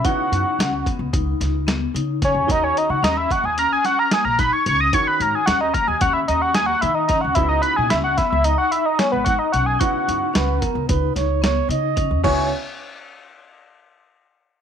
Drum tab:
CC |---------|---------|---------|---------|
HH |xxxxxxxxx|xxxxxxxxx|xxxxxxxxx|xxxxxxxxx|
SD |--o--oo-o|--o--ooo-|--o---o-o|--oo--o--|
BD |o--oo---o|o--o---o-|o--oo---o|o--o---o-|

CC |---------|x--------|
HH |xxxxxxxxx|---------|
SD |--o--oo--|---------|
BD |o--oo---o|o--------|